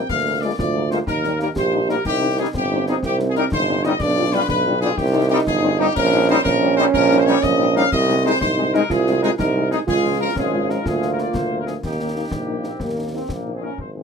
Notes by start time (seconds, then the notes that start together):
Already playing: C4
0.09 D2 A#3 F5, concert bass drum, snare, crash
0.26 G#3 A#3 F4
0.41 G#3 A#3 F4 D5
0.57 D2 F4 D5, concert bass drum, snare
0.75 G#3 A#3 F4
0.91 G#3 A#3 F4 C5, snare
1.07 D#2 D#4 A#4, concert bass drum, snare
1.24 G3 A#3 D#4, snare
1.39 G3 A#3 D#4 A#4, snare
1.55 A#1 G4 C5, concert bass drum, snare
1.73 G3 A#3 D#4
1.88 G3 A#3 D#4 A#4, snare
2.05 C2 D#4 G4, concert bass drum, snare, crash
2.21 G3 C4 D#4
2.37 G3 C4 D#4 G#4
2.54 G1 C4 G4, concert bass drum, snare
2.71 G3 C4 D#4
2.87 G3 C4 D#4 G#4, snare
3.03 C2 G4, concert bass drum, snare
3.19 G3 C4 D#4, snare
3.29 G#4
3.35 G3 C4 D#4 A#4, snare
3.51 G1 D#4 C5, concert bass drum, snare
3.68 G3 C4 D#4
3.84 G3 C4 D#4 D#5, snare
4.00 B1 D4 D5, concert bass drum, snare, crash
4.17 G3 D4 F4
4.33 G3 D4 F4 B4
4.49 B1 B4, concert bass drum, snare
4.66 G3 D4 F4
4.80 G3 D4 F4 G#4, snare
4.96 C2 D#4 G4, concert bass drum, snare
5.14 G3 C4 D#4
5.29 G3 C4 D#4 G4
5.46 G1 G#4, concert bass drum, snare
5.63 G3 C4 D#4
5.78 G3 C4 D#4 G4
5.95 A#1 C#4 A#4, concert bass drum, snare, crash
6.13 G3 C#4 D#4
6.29 G3 C#4 D#4 C5
6.43 A#1 C#4 A#4, concert bass drum, snare
6.61 G3 C#4 D#4
6.77 G3 C#4 D#4 C5, snare
6.93 A#1 A#4, concert bass drum, snare
7.11 G3 C#4 D#4, snare
7.18 C5
7.25 G3 C#4 D#4 C#5, snare
7.42 A#1 D#5, concert bass drum, snare
7.58 G3 C#4 D#4
7.75 G3 C#4 D#4 F5, snare
7.92 C2 C4 D#5, concert bass drum, snare, crash
8.08 G#3 C4 D#4
8.23 G#3 C4 D#4 C5
8.40 C2 D#4 C5, concert bass drum, snare
8.57 G#3 C4 D#4
8.74 G#3 C4 D#4 A#4, snare
8.90 C2 F4 G#4, concert bass drum, snare
9.07 G#3 C4 D#4, snare
9.22 G#3 C4 D#4 G#4, snare
9.38 C2 D#4 A#4, concert bass drum, snare
9.56 G#3 C4 D#4
9.71 G#3 C4 D#4 G#4, snare
9.87 C#2 G#3 F4 G#4, concert bass drum, snare, crash
10.04 F3 G#3 F4
10.20 F3 G#3 F4 A#4
10.36 G#1 G#3 C#4 F4 G#4, concert bass drum, snare
10.53 F3 G#3 F4
10.69 F3 G#3 F4 A#4, snare
10.85 D2 A#3 F4 G#4, concert bass drum, snare
11.01 F3 A#3 F4, snare
11.11 A#4
11.18 F3 A#3 F4 D5, snare
11.34 D2 C5, concert bass drum, snare
11.52 F3 A#3 F4
11.59 A#4
11.67 F3 A#3 F4 G#4, snare
11.82 D#2 A#3 D#4 G4, concert bass drum, snare, crash
12.00 A#3 D#4
12.15 A#3 D#4
12.31 A#1 A#3, concert bass drum, snare
12.47 A#3 D#4
12.63 A#3 C4 D#4, snare
12.80 D#2 A#3, concert bass drum, snare
12.96 A#3 D#4
13.12 A#3 C4 D#4
13.29 A#1 A#3 G4, concert bass drum, snare
13.45 A#3 D#4
13.53 C4 G#4
13.60 A#3 C#4 D#4 A#4
13.78 G#1 C5, concert bass drum
13.95 G#3 C4 D#4